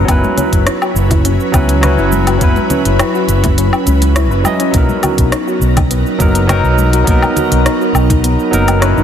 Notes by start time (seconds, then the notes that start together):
Already playing: F#3 C#4 E4 B4
0.05 F#1 F#3 B3 C#4, kick, closed hi-hat, low woodblock, shaker
0.09 E4 B4
0.24 high conga, shaker
0.37 C#4, closed hi-hat, low conga, shaker
0.52 F#1, kick, closed hi-hat, shaker
0.67 E4, cross-stick, closed hi-hat, shaker
0.82 F#4, low woodblock, shaker
0.95 F#1, shaker
1.10 E4, kick, closed hi-hat, muted conga, low conga, shaker
1.25 C#4, closed hi-hat, shaker
1.40 shaker
1.52 C#2 F#3 B3 C#4 E4 B4, kick, closed hi-hat, low woodblock, shaker
1.69 closed hi-hat, shaker
1.81 F#3 C#4 E4 B4, cross-stick, closed hi-hat, muted conga, low conga, shaker
1.98 F#1 E4, shaker
2.12 high conga, shaker
2.27 F#4, closed hi-hat, muted conga, low woodblock, shaker
2.38 F#1 F#3 B3 C#4, kick, closed hi-hat, shaker
2.42 E4 B4
2.56 high conga, shaker
2.70 C#4, closed hi-hat, low conga, shaker
2.85 F#1, closed hi-hat, shaker
2.99 E4, cross-stick, closed hi-hat, low woodblock, shaker
3.15 F#4, shaker
3.29 F#1, closed hi-hat, shaker
3.44 E4, kick, closed hi-hat, muted conga, low conga, shaker
3.58 C#4, closed hi-hat, shaker
3.73 low woodblock, shaker
3.87 C#2 C#4, closed hi-hat, shaker
4.02 closed hi-hat, muted conga, shaker
4.16 E4, cross-stick, closed hi-hat, shaker
4.31 F#1 B4, shaker
4.43 F#3 C#4 E4 D#5, high conga, low woodblock, shaker
4.60 C#4, closed hi-hat, shaker
4.71 B1 F#3 A#3 B3 D#4 A#4, kick, closed hi-hat, shaker
4.75 D#4 A#4
4.89 high conga, shaker
5.03 F#4, closed hi-hat, low conga, low woodblock, shaker
5.18 B1, kick, closed hi-hat, shaker
5.32 D#4, cross-stick, closed hi-hat, shaker
5.47 F#4, shaker
5.61 B1, shaker
5.76 D#4, kick, closed hi-hat, muted conga, low conga, low woodblock, shaker
5.91 B3, closed hi-hat, shaker
6.06 shaker
6.18 F#1 F#3 A#3 B3 D#4 A#4, kick, closed hi-hat, shaker
6.35 closed hi-hat, shaker
6.47 F#3 B3 D#4 A#4, cross-stick, closed hi-hat, muted conga, low conga, low woodblock, shaker
6.64 B1 D#4, shaker
6.78 high conga, shaker
6.93 F#4, closed hi-hat, muted conga, shaker
7.04 B1 F#3 A#3 B3, kick, closed hi-hat, shaker
7.08 D#4 A#4
7.22 high conga, low woodblock, shaker
7.36 F#4, closed hi-hat, low conga, shaker
7.52 B1, closed hi-hat, shaker
7.66 D#4, cross-stick, closed hi-hat, shaker
7.81 F#4, shaker
7.94 B1, low woodblock, shaker
8.10 D#4, kick, closed hi-hat, muted conga, low conga, shaker
8.24 B3, closed hi-hat, shaker
8.39 shaker
8.51 F#1 F#3 A#3 B3 D#4 A#4, closed hi-hat, shaker
8.68 closed hi-hat, muted conga, low woodblock, shaker
8.80 F#3 C#4 E4 A#4 B4, cross-stick, closed hi-hat, shaker
8.97 F#1 D#4, shaker